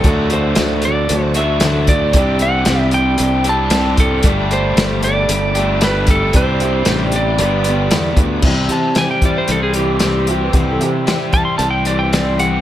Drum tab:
CC |--------|--------|--------|--------|
HH |xxxxxxxx|xxxxxxxx|xxxxxxxx|xxxxxxxx|
SD |--o---o-|--o---o-|--o---o-|--o---o-|
BD |o------o|o------o|o------o|o------o|

CC |x-------|--------|
HH |-xxxxxxx|xxxxxxxx|
SD |--o---o-|--o---o-|
BD |o--o----|o--o----|